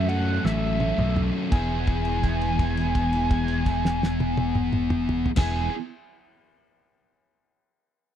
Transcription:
Already playing: F#2 A4
0.08 F#3 A3 C#4 A4 F#5, ride
0.44 A1 F#3 A3 C#4 A4 E5, snare
0.80 F#3 A3 C#4 A4, high tom
0.98 B1, mid tom
1.16 mid tom
1.50 E1 B3 E4 G#4 G#5, kick, crash
1.87 kick, crash
2.05 crash
2.23 kick, crash
2.41 crash
2.59 kick, crash
2.77 crash
2.95 kick, crash
3.13 crash
3.31 kick, crash
3.48 crash
3.66 kick, crash
3.85 snare
4.03 snare
4.20 high tom
4.37 high tom
4.55 mid tom
4.73 mid tom
4.90 mid tom
5.09 mid tom
5.26 floor tom
5.36 E1 B3 E4 G#5, kick, snare, crash
5.40 G#4

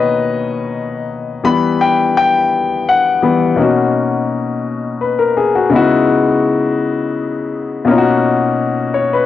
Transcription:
Already playing: B2 D#3 A#3 B4 C#5 D#5
1.44 E3 G3 B3 B5
1.81 G5
2.17 G5
2.89 F#5
3.22 E3 G3 B3
3.56 B2 A#3 C#4
3.60 D#4 F#4
5.01 B4
5.19 A#4
5.37 G#4
5.55 F#4
5.70 C#3 G#3 B3
5.74 D#4 E4 F#4
7.85 B2 A#3 C#4
7.90 D#4 F4
7.98 F#4
8.94 C#5
9.13 B4

